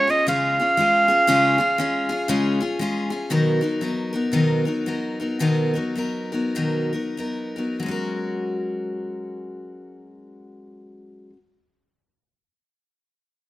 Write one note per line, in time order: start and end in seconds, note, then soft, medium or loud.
0.00 0.11 C#5 loud
0.07 0.27 C#4 soft
0.07 0.27 F4 soft
0.07 0.27 G#4 medium
0.07 0.28 D#5 medium
0.27 0.58 C#3 medium
0.27 0.58 G#3 medium
0.27 0.59 C#4 medium
0.27 0.59 F4 medium
0.27 0.58 G#4 medium
0.27 2.76 F5 medium
0.59 0.77 C#4 soft
0.59 0.78 F4 soft
0.59 0.78 G#4 medium
0.77 1.08 G#3 medium
0.77 1.09 C#4 medium
0.77 1.08 F4 medium
0.77 1.07 G#4 medium
1.08 1.27 C#4 soft
1.08 1.27 F4 medium
1.08 1.28 G#4 medium
1.27 1.59 C#3 medium
1.27 1.59 G#3 loud
1.27 1.59 C#4 loud
1.27 1.59 F4 loud
1.27 1.57 G#4 loud
1.58 1.78 C#4 medium
1.58 1.79 F4 medium
1.58 1.78 G#4 medium
1.78 2.09 G#3 medium
1.78 2.10 C#4 medium
1.78 2.09 F4 medium
1.78 2.08 G#4 medium
2.09 2.28 C#4 soft
2.09 2.29 F4 medium
2.09 2.29 G#4 medium
2.28 2.60 C#3 medium
2.28 2.60 G#3 medium
2.28 2.60 C#4 medium
2.28 2.61 F4 medium
2.28 2.59 G#4 medium
2.60 2.80 C#4 soft
2.60 2.80 F4 medium
2.60 2.80 G#4 medium
2.79 3.11 G#3 medium
2.79 3.11 C#4 medium
2.79 3.11 F4 medium
2.79 3.09 G#4 medium
3.10 3.31 C#4 soft
3.10 3.31 F4 medium
3.10 3.30 G#4 medium
3.30 3.61 B2 medium
3.30 3.61 D#3 medium
3.30 3.62 F#3 medium
3.30 3.62 B3 medium
3.30 3.61 D#4 medium
3.30 3.60 A#4 medium
3.61 3.80 F#3 soft
3.61 3.81 B3 soft
3.61 3.81 D#4 soft
3.61 3.81 A#4 soft
3.81 4.13 F#3 medium
3.81 4.13 B3 medium
3.81 4.13 D#4 medium
3.81 4.11 A#4 medium
4.13 4.32 F#3 soft
4.13 4.32 B3 soft
4.13 4.32 D#4 medium
4.13 4.33 A#4 medium
4.32 4.64 B2 medium
4.32 4.65 D#3 medium
4.32 4.65 F#3 medium
4.32 4.65 B3 medium
4.32 4.65 D#4 medium
4.32 4.64 A#4 medium
4.65 4.85 F#3 soft
4.65 4.86 B3 soft
4.65 4.86 D#4 soft
4.65 4.85 A#4 soft
4.86 5.19 F#3 medium
4.86 5.20 B3 medium
4.86 5.20 D#4 medium
4.86 5.18 A#4 medium
5.20 5.39 F#3 soft
5.20 5.40 B3 soft
5.20 5.40 D#4 soft
5.20 5.40 A#4 soft
5.39 5.74 B2 medium
5.39 5.74 D#3 medium
5.39 5.74 F#3 medium
5.39 5.75 B3 medium
5.39 5.74 D#4 medium
5.39 5.72 A#4 medium
5.74 5.94 F#3 soft
5.74 5.96 B3 soft
5.74 5.96 D#4 soft
5.74 5.96 A#4 soft
5.95 6.32 F#3 medium
5.95 6.32 B3 medium
5.95 6.31 D#4 medium
5.95 6.31 A#4 medium
6.32 6.55 F#3 soft
6.32 6.55 B3 soft
6.32 6.55 D#4 soft
6.32 6.55 A#4 soft
6.55 6.92 B2 medium
6.55 6.93 D#3 medium
6.55 6.93 F#3 medium
6.55 6.93 B3 medium
6.55 6.92 D#4 medium
6.55 6.92 A#4 medium
6.93 7.16 F#3 soft
6.93 7.17 B3 soft
6.93 7.17 D#4 soft
6.93 7.16 A#4 soft
7.17 7.56 F#3 soft
7.17 7.57 B3 medium
7.17 7.56 D#4 medium
7.17 7.55 A#4 medium
7.56 7.78 F#3 soft
7.56 7.82 B3 soft
7.56 7.82 D#4 soft
7.56 7.81 A#4 soft
7.80 11.30 F#3 medium
7.80 11.33 G#3 medium
7.86 11.36 C#4 medium
7.86 11.38 F#4 medium
7.91 11.41 A#4 medium